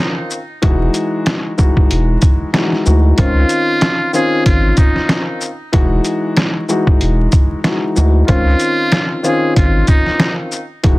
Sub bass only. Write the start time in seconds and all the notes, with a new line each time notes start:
0.63 E1
1.91 E1
2.87 D2
3.19 C#2
4.46 G#1
5.74 E1
7.02 E1
7.97 D2
8.29 C#2
9.57 G#1
10.84 E1